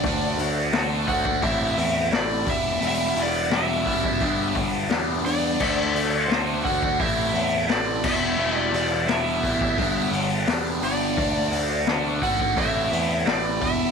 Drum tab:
CC |----------------|----------------|x-------------x-|----------------|
HH |o-o-o-o-o-o-o-o-|o-o-o-o-o-o-o-o-|--o-o-o-o-o-o---|--o-o-o-o-o-o-o-|
SD |----o-------o---|----o-------o---|----o-------o---|----o-------o---|
BD |o-----ooo-----o-|------ooo-o-----|o-----ooo-----o-|------ooo-------|

CC |----------------|
HH |o-o-o-o-o-o-o-o-|
SD |----o-------o---|
BD |o-----ooo-----o-|